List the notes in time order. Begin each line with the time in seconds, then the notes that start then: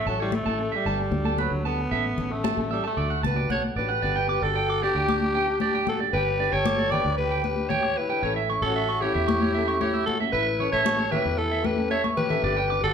0.05 A1 F#3 C#4 E4 A4 A5
0.19 G3 E4 A4 C#5
0.32 A3, muted clean electric guitar stroke, high conga
0.46 A1 E4 A4 A5
0.58 C#4 A4, muted conga
0.72 G3 E5
0.85 G1 G3 B3 D4 A4 A5, muted conga
1.11 D2, muted conga, high conga
1.25 B3 D4 A4 A5
1.38 F#3 B4, high conga
1.51 D2
1.65 G3 B3 D4 A4 A5
1.91 A1 A3 C#4 A4 E5, muted nylon-string guitar stroke, muted conga
2.17 A1 E3 A3 C#4 A4, low conga
2.30 A3 C#4 A4
2.44 A5, high conga
2.57 A1 C#4 A4
2.61 A3
2.71 E3 G3 A3 C#4 A4 E5, muted conga
2.84 A3 A5
2.97 D2 A3 D4 F#4 D5, muted conga
3.10 F#5
3.23 C#2 G4 B4 A5, muted conga, high conga, low conga
3.36 F#4 D5
3.41 D4
3.50 B1 A4 C#5 F#5, high conga
3.76 A1 A3 D4 G4 B4 D5
3.80 F#4
3.89 F#5
4.02 G1 B3 D4 G4 D5, muted conga
4.16 G5
4.28 B3 G4 D6
4.42 G1 D4 F#4 G4 A4 D5
4.56 G5
4.70 D6
4.81 B3 D4 G4 D5, muted conga
4.95 D2 G5
5.09 D6, muted conga, high conga
5.34 B3 D4 G4 G5, muted conga
5.47 D4 G4
5.60 D4 G4 D5, high conga
5.75 G5
5.87 F#4 A4, high conga
5.99 D4 G4 D5
6.13 G1 G4 B4 G5, muted conga
6.38 B3 D4 G4 D5
6.51 G1 G4 A4 C#5 G5
6.66 D6, high conga
6.79 D5
6.90 B3 D4 G4 B4 D5 G5, muted conga, low conga
7.05 D2
7.18 G4 B4, muted conga
7.31 G5
7.43 B3 G4 B4, muted conga, high conga
7.56 D4 G4
7.69 G4 C#5 G5, high conga, low conga
7.83 muted clean electric guitar stroke
7.97 E4 B4
8.09 D4 G4 G5
8.22 A1 E3 A3 C#4 A4 C#5, muted conga
8.36 E5
8.49 E3 A3 C#4 C#6
8.62 A1 A3 C#4 F#4 A4 C#5
8.76 E5
8.89 C#6
9.01 E3 A3 C#4 E4 G4 C#5, muted conga
9.05 A4
9.15 E2 E5
9.28 C#6, muted conga, high conga
9.41 C#5
9.54 E3 A3 C#4 A4 E5, muted conga
9.68 A3 C#4 C#6
9.80 E4 G4 C#5, high conga
9.94 E5
10.06 F#4 A4, high conga
10.20 A3 C#4 A4 E5
10.32 A1 E4 B4 E5, muted conga
10.59 E3 A3 C#4 A4 C#5
10.72 A1 A3 C#4 A4 C#5 E5
10.86 C#6, high conga
10.99 C#5
11.11 E3 A3 C#4 G4 B4 E5, muted conga, low conga
11.16 A4
11.25 E2
11.38 E4 A4, muted conga
11.52 E5
11.63 E3 A3 C#4 G4 B4, muted conga, high conga
11.68 A4
11.77 C#4 A4
11.90 A4 C#5 E5, high conga
12.04 C#6, high conga
12.17 G4 B4, low conga
12.30 A3 C#4 A4 E5, low conga
12.43 G1 B3 D4 G4 D5, muted conga
12.57 G5
12.69 B3 D4 D6
12.81 G1 F#4 G4 A4 D5, muted nylon-string guitar stroke